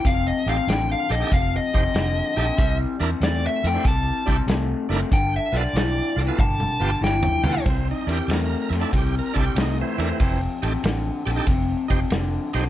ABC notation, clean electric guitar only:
X:1
M:4/4
L:1/8
Q:"Swing" 1/4=94
K:Cmix
V:1 name="Clean electric guitar" clef=bass
[F,,C,] [F,,C,] [F,,D,] [F,,D,] [F,,C,] [F,,C,] [F,,D,] [F,,D,] | [C,G,] [C,G,] [C,A,] [C,A,] [C,G,] [C,G,] [C,A,] [C,A,] | [G,,D,] [G,,D,] [G,,E,] [G,,E,] [G,,D,] [G,,D,] [G,,E,] [G,,E,] | [C,G,] [C,G,] [C,A,] [C,A,] [C,G,] [C,G,] [C,A,] [C,A,] |
[F,,C,] [F,,C,] [F,,D,] [F,,D,] [F,,C,] [F,,C,] [F,,D,] [F,,D,] |]